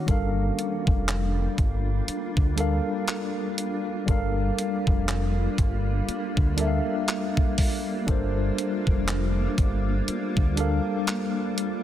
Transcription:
0.06 G1 G3 A#3 D4 F4 A4 A#4, kick, closed hi-hat
0.11 F5
0.59 closed hi-hat
0.87 F1, kick
1.08 clap, closed hi-hat
1.58 G1, kick, closed hi-hat
2.08 muted fingered electric bass stroke, closed hi-hat
2.37 D2, kick
2.56 G3 D4 A4 A#4, closed hi-hat
2.60 F5
3.08 clap, closed hi-hat
3.58 closed hi-hat
4.06 G1 G3 D4 A4 A#4, kick, closed hi-hat
4.11 F5
4.59 closed hi-hat
4.87 F1, kick
5.08 clap, closed hi-hat
5.58 G1, kick, closed hi-hat
6.08 muted fingered electric bass stroke, closed hi-hat
6.37 D2, kick
6.56 G3 D4 A4 A#4, closed hi-hat
6.61 E5
6.67 F5
7.08 clap, closed hi-hat
7.37 kick
7.58 kick, open hi-hat
8.06 G1 G3 D4 A4 A#4, kick, closed hi-hat
8.11 C5
8.58 closed hi-hat
8.87 F1, kick
9.08 clap, closed hi-hat
9.58 G1, kick, closed hi-hat
10.08 muted fingered electric bass stroke, closed hi-hat
10.37 D2, kick
10.56 G3 D4 A4 A#4, closed hi-hat
10.60 F5
11.07 clap, closed hi-hat
11.58 closed hi-hat

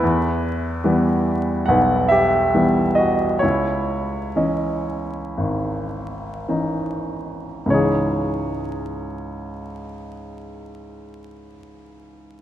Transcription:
Already playing: E4 B4
0.03 E2
0.84 E3 G3 B3
1.66 B1 B4 F#5
2.08 G4 E5
2.54 E3 G3 B3
2.95 F#4 D#5
3.39 C#2 E4 C#5
4.36 E3 C#4 D#5
5.37 G#1
6.48 E3 C#4 D#4
7.66 C#2 G#2 C#3
7.70 E3 D#4 G#4 C#5

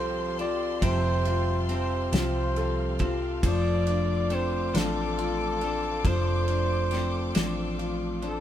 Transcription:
Already playing: C2 F3 G3 C4 F4 G4 A4 C5 F5 A5 C6
0.39 C4 F4 G4 A4 D5, ride
0.81 F1 C3 F3 G3 C4 G4 A4 C5, kick, ride
1.25 F4, ride
1.68 G3 C4 G4 A4, ride
1.74 C5
2.12 C2 F3 G3 C4 F4 G4 A4, snare, ride
2.18 C5
2.56 A4, ride
2.99 C4 F4 G4 A4, kick, ride
3.41 F1 F3 A3 D4 A4 C6 D6, kick, ride
3.45 F3 C5 D5
3.87 D4, ride
4.30 A3 C4 D4 A4 C5, ride
4.35 C5
4.73 A1 F3 A3 D4 A4 C5, snare, ride
5.18 F4, ride
5.61 D4 A4 C5, ride
6.05 F1 F3 A3 D4 A4 C5, kick, ride
6.48 D4, ride
6.91 A3 C4 D4 A4 C5, snare, ride
7.35 A1 F3 A3 D4 A4 C5, snare, ride
7.79 F4, ride
8.22 D4 A4 C5, ride
8.28 A4

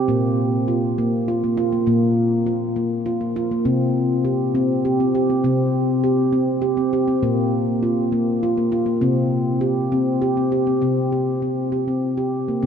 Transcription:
0.08 A#2 A#3
0.68 F4
0.98 A#3
1.28 F4
1.44 A#3
1.57 F4
1.72 A#3
1.86 A#2 A#3
2.46 F4
2.76 A#3
3.06 F4
3.21 A#3
3.36 F4
3.51 A#3
3.65 C3 C4
4.24 G4
4.55 C4
4.85 G4
5.00 C4
5.15 G4
5.30 C4
5.44 C3 C4
6.04 G4
6.32 C4
6.62 G4
6.77 C4
6.93 G4
7.08 C4
7.22 A#2 A#3
7.83 F4
8.12 A#3
8.43 F4
8.57 A#3
8.72 F4
8.86 A#3
9.01 C3 C4
9.61 G4
9.92 C4
10.22 G4
10.37 C4
10.52 G4
10.67 C4
10.82 C3 C4
11.12 G4
11.42 C4
11.72 G4
11.88 C4
12.17 G4
12.48 A#3
12.62 C3 C4

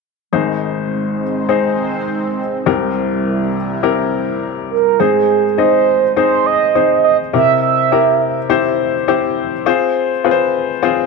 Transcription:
0.32 G#1 G#2 G#3 C4 D#4 G#4 C5
1.49 C4 D#4 G#4 C5
2.66 C2 C3 G3 C4 E4 G4 A#4
3.83 C4 E4 G4 A#4
4.71 A#4
5.00 G#2 C4 D#4 G#4 C5
5.58 C4 D#4 G#4 C5 D#5
6.17 C4 D#4 G#4 C5
6.46 D#5
6.75 C4 D#4 G#4 C5
7.04 D#5
7.33 C3 C4 E4 G4 A#4 E5
7.62 E5
7.92 C4 E4 G4 A#4
8.50 C4 E4 G4 C5
9.08 C4 E4 G4 C5
9.66 C4 F4 G#4 C5
10.24 C4 F4 G#4 B4
10.31 C5
10.83 C4 F4 G#4 C5

